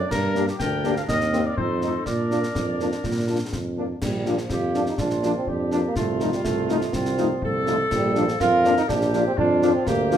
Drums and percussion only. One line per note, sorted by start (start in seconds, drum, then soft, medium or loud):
0.11 concert bass drum medium
0.11 snare medium
0.11 crash soft
0.35 snare medium
0.48 snare soft
0.60 concert bass drum medium
0.60 snare medium
0.84 snare soft
0.97 snare soft
1.09 concert bass drum medium
1.09 snare medium
1.21 snare medium
1.33 snare medium
1.57 concert bass drum medium
1.82 snare soft
2.06 concert bass drum medium
2.06 snare medium
2.31 snare medium
2.43 snare medium
2.55 concert bass drum medium
2.55 snare medium
2.80 snare soft
2.92 snare soft
3.04 concert bass drum medium
3.04 snare medium
3.53 concert bass drum medium
3.53 snare medium
4.02 concert bass drum medium
4.02 snare medium
4.02 crash medium
4.26 snare soft
4.38 snare soft
4.50 concert bass drum medium
4.50 snare medium
4.74 snare soft
4.86 snare soft
4.98 concert bass drum medium
4.98 snare medium
5.10 snare soft
5.23 snare medium
5.47 concert bass drum medium
5.71 snare medium
5.96 concert bass drum medium
5.96 snare medium
6.20 snare medium
6.32 snare soft
6.45 concert bass drum medium
6.45 snare medium
6.69 snare medium
6.81 snare soft
6.93 concert bass drum medium
6.93 snare medium
7.05 snare medium
7.18 snare soft
7.42 concert bass drum medium
7.67 snare medium
7.91 concert bass drum medium
7.91 snare medium
7.91 crash soft
8.15 snare soft
8.28 snare medium
8.40 concert bass drum medium
8.40 snare medium
8.65 snare medium
8.77 snare soft
8.89 concert bass drum medium
8.89 snare medium
9.01 snare soft
9.14 snare medium
9.38 concert bass drum medium
9.62 snare medium
9.87 concert bass drum medium
9.87 snare medium
10.11 snare medium